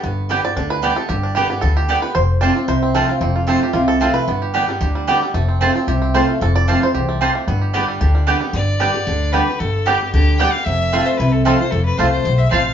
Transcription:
<<
  \new Staff \with { instrumentName = "Fiddle" } { \time 4/4 \key g \mixolydian \tempo 4 = 226 r1 | r1 | r1 | r1 |
r1 | r1 | r1 | r1 |
d''2. b'4 | a'4 g'4 g'4 g''8 f''8 | e''4. c''8 b'8 a'8 a'8 c''8 | a'8 b'8 c''8 c''4 e''8 f''8. r16 | }
  \new Staff \with { instrumentName = "Mandolin" } { \time 4/4 \key g \mixolydian r4 <b g' d'' g''>8 r4. <b g' d'' g''>8 r8 | r4 <b g' d'' g''>8 r4. <b g' d'' g''>8 r8 | r4 <c' f' c'' a''>8 r4. <c' f' c'' a''>8 r8 | r4 <c' f' c'' a''>8 r4. <c' f' c'' a''>8 r8 |
r4 <b g' d'' g''>8 r4. <b g' d'' g''>8 r8 | r4 <c' f' c'' a''>8 r4. <c' f' c'' a''>8 r8 | r4 <c' f' c'' a''>8 r4. <c' f' c'' a''>8 r8 | r4 <b g' d'' g''>8 r4. <b g' d'' g''>8 r8 |
r4 <b g' d'' g''>8 r4. <b g' d'' g''>8 r8 | r4 <b g' d'' g''>8 r4. <b g' d'' g''>8 r8 | r4 <c' f' c'' a''>8 r4. <c' f' c'' a''>8 r8 | r4 <c' f' c'' a''>8 r4. <c' f' c'' a''>8 r8 | }
  \new Staff \with { instrumentName = "Five-string banjo" } { \time 4/4 \key g \mixolydian << { r4 b'8 d''4 b'4 a'8 | g'4 g'4 a'8 g'8 r8 b'8 | c''4 d''4 c''4 a'4 | r4 a'4 f'8 a'4 b'8~ |
b'2 r2 | r2. c''4 | a'8 d''4 c''2~ c''8 | r1 |
r4 <g b d'>8 r4. <g b d'>8 r8 | r4 <g b d'>8 r4. <g b d'>8 r8 | r4 <a c' f'>8 r4. <a c' f'>8 r8 | r4 <a c' f'>8 r4. <a c' f'>8 r8 | } \\ { b4. r8 d'4 d'4~ | d'8 d'4 b4. b4 | r4. c'4 c'4 f'8 | c'8 f'4 g'4. f'4 |
b8 g'8 d'8 g8 g'8 g8 g'8 g8 | a8 c'8 f8 c'8 g'8 c'4 f'8~ | f'4 f'4 g'8 a8 g'8 a8 | b8 g'8 d'8 g8 g'8 g8 g'8 g8 |
r1 | r1 | r1 | r1 | } >> }
  \new Staff \with { instrumentName = "Steel-string acoustic guitar" } { \time 4/4 \key g \mixolydian << { r4 <d g b g'>8 <b g'>8 r4 <d g b g'>8 <b g'>8 | r4 <d g b g'>8 <b g'>8 r4 <d g b g'>8 <b g'>8 | r4 <f a c' f'>8 <c' f'>8 r4 <f a c' f'>8 <c' f'>8 | r4 <f a c' f'>8 <c' f'>8 r4 <f a c' f'>4 |
r4 <d g b g'>8 <b g'>8 r4 <d g b g'>8 <b g'>8 | r4 <f a c' f'>8 <c' f'>8 r4 <f a c' f'>4 | r4 <f a c' f'>8 <c' f'>8 r2 | r4 <d g b g'>4 r4 <d g b g'>8 <b g'>8 |
r4 <d g b g'>8 <b g'>8 r4 <d g b g'>8 <b g'>8 | r4 <d g b g'>8 <b g'>8 r4 <d g b g'>8 <b g'>8 | r4 <f a c' f'>4 r4 <f a c' f'>8 <c' f'>8 | r4 <f a c' f'>4 r2 | } \\ { g,2 d2 | g,2 d2 | f,2 c2 | f,2 c2 |
g,2 d2 | f,2 c2 | f,2 e,4 f,4 | g,2 d2 |
g,2 d2 | g,2 d2 | f,2 c2 | f,2 e,4 f,4 | } >> }
  \new Staff \with { instrumentName = "Upright bass" } { \clef bass \time 4/4 \key g \mixolydian g,,2 d,2 | g,,2 d,2 | f,,2 c,2 | f,,2 c,2 |
g,,2 d,2 | f,,2 c,2 | f,,2 c,2 | g,,2 d,2 |
g,,2 d,2 | g,,2 d,2 | f,,2 c,2 | f,,4 c,4 b,,4 a,,4 | }
>>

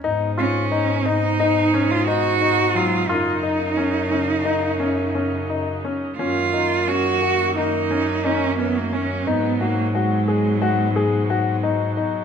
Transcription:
<<
  \new Staff \with { instrumentName = "Grand piano" } { \time 9/8 \key ges \major \tempo 4. = 59 ees'8 f'8 ees'8 ees'8 ees'8 des'8 ees'8 ees'8 ges8 | f'8 ees'8 des'8 des'8 ees'8 des'8 des'8 ees'8 des'8 | des'8 ees'8 des'8 ges'8 ees'8 des'8 ees'8 des'8 des'8 | ees'8 ges'8 ges'8 aes'8 ges'8 aes'8 ges'8 ees'8 ees'8 | }
  \new Staff \with { instrumentName = "Cello" } { \time 9/8 \key ges \major r8 des'4 ees'4~ ees'16 f'16 ges'4 f'8 | ees'2.~ ees'8 r4 | f'4 ges'4 ees'4 des'8 ces'16 bes16 des'8 | ces'8 bes8 aes2 r4. | }
  \new Staff \with { instrumentName = "String section" } { \clef bass \time 9/8 \key ges \major << { ees'1~ ees'8~ | ees'1~ ees'8 | ges1~ ges8~ | ges1~ ges8 | } \\ { <ces aes>1~ <ces aes>8 | <des ges>1~ <des ges>8 | <ees bes>1~ <ees bes>8 | <ces aes>1~ <ces aes>8 | } >> }
  \new Staff \with { instrumentName = "Bass clarinet" } { \clef bass \time 9/8 \key ges \major aes,1~ aes,8 | ges,1~ ges,8 | ges,1~ ges,8 | aes,1~ aes,8 | }
>>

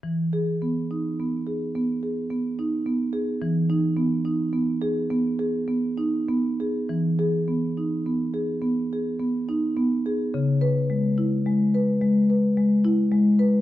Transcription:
<<
  \new Staff \with { instrumentName = "Marimba" } { \time 4/4 \key e \major \tempo 4 = 71 \tuplet 3/2 { r8 gis'4 } r2. | r1 | \tuplet 3/2 { r8 gis'4 } r2. | \tuplet 3/2 { r8 b'4 } r2. | }
  \new Staff \with { instrumentName = "Marimba" } { \time 4/4 \key e \major \tuplet 3/2 { e4 b8 dis'8 b8 gis'8 b8 gis'8 b8 dis'8 b8 gis'8 } | \tuplet 3/2 { e8 dis'8 b8 dis'8 b8 gis'8 b8 gis'8 b8 dis'8 b8 gis'8 } | \tuplet 3/2 { e4 b8 dis'8 b8 gis'8 b8 gis'8 b8 dis'8 b8 gis'8 } | \tuplet 3/2 { cis4 gis8 e'8 gis8 b'8 gis8 b'8 gis8 e'8 gis8 b'8 } | }
>>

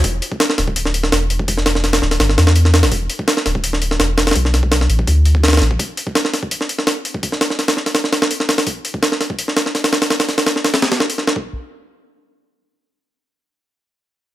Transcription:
<<
  \new Staff \with { instrumentName = "Sub bass" } { \clef bass \time 4/4 \key e \minor \tempo 4 = 167 e,,8 r4 d,,4. e,,4~ | e,,4. d,,8 g,,8 e,4~ e,16 g,,16 | e,,8 r4 d,,4. e,,4 | b,,4. a,,8 d,4. a,,8 |
r1 | r1 | r1 | r1 |
r1 | r1 | }
  \new DrumStaff \with { instrumentName = "Drums" } \drummode { \time 4/4 <hho bd>8 hho16 bd16 <hho sn>16 sn16 <hho sn>16 bd16 hho16 sn16 hho16 sn16 <hho sn>8 hho16 bd16 | <hho bd>16 sn16 <hho sn>16 sn16 <hho sn>16 <hho sn>16 sn16 <hho sn>16 <hho sn>16 sn16 <hho sn>16 sn16 hho16 sn16 <hho sn>16 <hho sn>16 | <hho bd>8 hho16 bd16 <hho sn>16 sn16 <hho sn>16 bd16 hho16 sn16 hho16 sn16 <hho sn>8 <hho sn>16 <hho sn>32 <hho sn>32 | <hho bd>16 sn16 <hho sn>16 bd16 <hho sn>16 sn16 hho16 bd16 <hho bd>8 hho16 bd16 <hho sn>32 <hho sn>32 <hho sn>32 <hho sn>32 <hho sn>16 bd16 |
<hho bd>8 hho16 bd16 <hho sn>16 sn16 <hho sn>16 bd16 hho16 sn16 hho16 sn16 <hho sn>8 hho16 bd16 | <hho bd>16 sn16 <hho sn>16 sn16 <hho sn>16 <hho sn>16 sn16 <hho sn>16 <hho sn>16 sn16 <hho sn>16 sn16 hho16 sn16 <hho sn>16 <hho sn>16 | <hho bd>8 hho16 bd16 <hho sn>16 sn16 <hho sn>16 bd16 hho16 sn16 <hho sn>16 sn16 <hho sn>16 <hho sn>16 <hho sn>16 <hho sn>16 | <hho sn>16 <hho sn>16 <hho sn>16 <hho sn>16 <hho sn>16 sn16 <hho sn>16 <hho sn>16 <hho sn>16 <hho sn>16 sn16 hho16 sn16 sn16 bd8 |
r4 r4 r4 r4 | r4 r4 r4 r4 | }
>>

